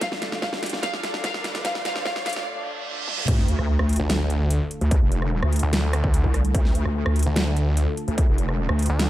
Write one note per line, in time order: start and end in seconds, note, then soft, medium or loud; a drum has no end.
0.00 3.24 D3 medium
0.00 3.24 A3 medium
0.00 3.24 F4 medium
0.00 3.27 D5 medium
0.00 0.09 F5 medium
0.00 kick medium
0.00 snare medium
0.00 closed hi-hat medium
0.00 riser medium
0.12 snare medium
0.22 snare medium
0.22 closed hi-hat medium
0.32 snare medium
0.42 0.50 F5 medium
0.42 kick medium
0.42 snare medium
0.53 snare medium
0.63 snare medium
0.63 closed hi-hat soft
0.66 closed hi-hat medium
0.69 snare medium
0.69 closed hi-hat medium
0.83 0.91 F5 loud
0.83 kick loud
0.83 snare loud
0.83 closed hi-hat medium
0.93 snare medium
1.03 snare medium
1.03 closed hi-hat medium
1.14 snare medium
1.24 1.32 F5 loud
1.24 kick loud
1.24 snare loud
1.24 closed hi-hat medium
1.34 snare medium
1.44 snare medium
1.44 closed hi-hat soft
1.55 snare medium
1.55 closed hi-hat soft
1.65 1.73 F5 loud
1.65 kick medium
1.65 snare loud
1.65 closed hi-hat medium
1.75 snare medium
1.85 1.93 F5 loud
1.85 snare loud
1.85 closed hi-hat medium
1.96 snare medium
2.06 2.14 F5 medium
2.06 kick loud
2.06 snare loud
2.16 snare medium
2.26 2.34 F5 loud
2.26 snare loud
2.26 closed hi-hat soft
2.29 closed hi-hat medium
2.33 snare medium
2.33 closed hi-hat medium
2.46 reverse cymbal medium
3.08 high tom medium
3.18 mid tom medium
3.28 3.57 D2 loud
3.28 9.10 D3 medium
3.28 9.10 A3 medium
3.28 9.10 F4 medium
3.28 9.10 A4 medium
3.28 kick loud
3.28 closed hi-hat medium
3.28 crash loud
3.28 sub drop medium
3.38 snare soft
3.48 closed hi-hat medium
3.59 3.78 D2 loud
3.59 cross-stick medium
3.79 3.98 D2 loud
3.79 cross-stick medium
3.89 closed hi-hat medium
3.93 closed hi-hat medium
3.96 4.59 D2 medium
3.96 closed hi-hat medium
4.10 snare loud
4.10 closed hi-hat medium
4.30 closed hi-hat medium
4.50 closed hi-hat medium
4.71 closed hi-hat medium
4.81 5.00 D2 loud
4.81 closed hi-hat soft
4.91 kick loud
4.91 closed hi-hat medium
5.02 5.41 F1 loud
5.12 closed hi-hat medium
5.22 cross-stick medium
5.43 5.61 D2 loud
5.43 cross-stick medium
5.53 closed hi-hat medium
5.56 closed hi-hat medium
5.59 6.22 D2 medium
5.59 closed hi-hat medium
5.73 snare loud
5.73 closed hi-hat medium
5.93 cross-stick medium
5.93 closed hi-hat medium
6.04 kick loud
6.14 closed hi-hat medium
6.24 6.53 C2 medium
6.24 kick medium
6.34 cross-stick soft
6.34 closed hi-hat medium
6.45 closed hi-hat soft
6.55 6.84 D2 loud
6.55 kick loud
6.55 closed hi-hat medium
6.65 snare soft
6.75 closed hi-hat medium
6.85 7.04 D2 loud
6.85 cross-stick soft
7.06 7.25 D2 loud
7.06 cross-stick medium
7.16 closed hi-hat soft
7.19 closed hi-hat medium
7.23 7.86 D2 medium
7.23 closed hi-hat medium
7.36 snare loud
7.36 closed hi-hat medium
7.57 closed hi-hat medium
7.77 closed hi-hat medium
7.97 closed hi-hat soft
8.08 8.27 D2 loud
8.08 closed hi-hat soft
8.18 kick loud
8.18 closed hi-hat medium
8.28 8.67 F1 loud
8.38 closed hi-hat medium
8.49 cross-stick medium
8.69 8.88 D2 loud
8.69 cross-stick medium
8.79 closed hi-hat soft
8.82 closed hi-hat medium
8.86 9.10 D2 medium
8.86 closed hi-hat medium
8.99 snare loud
8.99 closed hi-hat medium